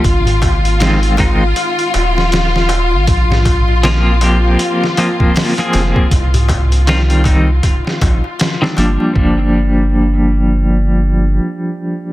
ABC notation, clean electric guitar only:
X:1
M:4/4
L:1/16
Q:"Swing 16ths" 1/4=79
K:Gphr
V:1 name="Clean electric guitar"
z4 [E,A,CF]2 [E,A,CE] z8 z | z4 [F,B,CF]2 [F,B,CG]4 [F,B,CF]3 [F,B,CA]3 | z4 [E,G,CF]2 [E,G,CE] z6 [E,G,CD] [F,G,B,D]2 | [F,G,B,D]16 |]